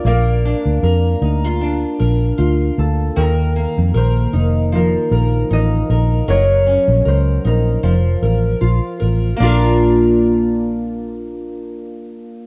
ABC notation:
X:1
M:4/4
L:1/16
Q:"Swing 16ths" 1/4=77
K:Bb
V:1 name="Harp"
d4 z8 z2 A2 | B4 c4 B4 e4 | _d4 c2 B6 z4 | d16 |]
V:2 name="Steel-string acoustic guitar"
[B,DFB]2 D2 B2 E F D2 B2 F4 | [E,B]2 B,2 B2 E2 F,2 B2 E2 B2 | [_G,B]2 _D2 B2 E2 F,2 B2 F2 B2 | [B,DFB]16 |]
V:3 name="Fingered electric bass" clef=bass
B,,,3 D,, F,,2 D,,4 B,,,2 D,,2 D,,2 | E,,3 F,, B,,,2 F,,,4 B,,,2 A,,,2 B,,,2 | _G,,,3 B,,, _D,,2 B,,,2 F,,,2 A,,,2 B,,, z A,,,2 | B,,,16 |]